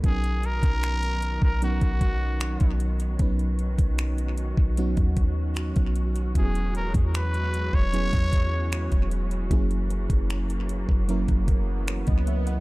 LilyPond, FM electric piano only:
\new Staff \with { instrumentName = "FM electric piano" } { \time 4/4 \key b \major \tempo 4 = 76 << { r1 | r1 | r1 | r2. <ais' cis''>16 dis''16 <cis'' e''>16 <dis'' fis''>16 | } \\ { <fis b cis' dis' ais'>4. r8 <fis b cis' dis' ais'>4. r8 | <fis b cis' dis' b'>4. r8 <fis b cis' dis' fis'>4. r8 | <fis b cis' e' fis' gis'>4. r8 <fis b cis' e' gis'>4. r8 | <fis ais cis' e' gis'>4. r8 <fis ais cis' e' ais'>4. r8 | } >> }